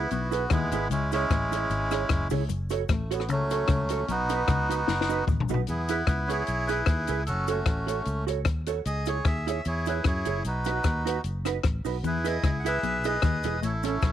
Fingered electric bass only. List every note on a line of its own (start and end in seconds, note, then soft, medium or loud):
0.11 0.45 B1 loud
0.51 0.69 D#2 medium
0.72 0.88 G#1 medium
0.90 1.24 C#2 loud
1.31 1.65 A1 loud
1.70 2.04 G#1 loud
2.10 2.28 F#1 medium
2.32 2.47 C#2 loud
2.50 2.84 F#1 loud
2.90 3.29 A1 loud
3.29 3.63 C#2 loud
3.69 4.03 C#2 loud
4.09 4.42 B1 loud
4.49 4.82 C#2 loud
4.88 5.22 F#1 loud
5.28 5.46 A1 medium
5.50 5.65 B1 medium
5.69 6.02 E2 loud
6.08 6.41 C#2 loud
6.48 6.82 B1 medium
6.87 7.05 D#2 medium
7.09 7.29 C#2 medium
7.28 7.61 F#1 loud
7.66 8.00 A1 loud
8.06 8.46 C#2 medium
8.46 8.80 D#2 medium
8.86 9.20 C#2 loud
9.25 9.59 D#2 medium
9.66 9.99 E2 loud
10.05 10.24 F#2 medium
10.27 10.42 F#1 medium
10.45 10.79 B1 loud
10.84 11.18 D#2 medium
11.24 11.58 F#1 medium
11.65 11.83 A1 medium
11.85 12.01 B1 medium
12.04 12.37 E2 loud
12.44 12.77 C#2 loud
12.83 13.17 B1 loud
13.23 13.41 D#2 medium
13.44 13.60 E1 medium
13.63 13.97 A1 loud
14.03 14.12 B1 medium